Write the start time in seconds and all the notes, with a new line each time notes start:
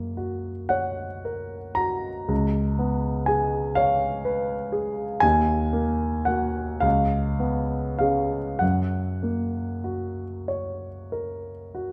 Already playing: F#2 A#3
0.17 F#4
0.69 C#5 F#5
1.25 A#4
1.75 F#4 A#5
2.28 C#2
2.79 B3
3.26 G#4 G#5
3.75 C#5 F5
4.25 B4
4.72 G#4
5.20 D#2 G#5
5.73 A#3
6.25 A#3 F#4 F#5
6.80 C#2 F5
7.39 B3
7.99 C#4 G#4 F5
8.59 F#2 F#5
9.23 A#3
9.84 F#4
10.48 C#5
11.12 A#4
11.75 F#4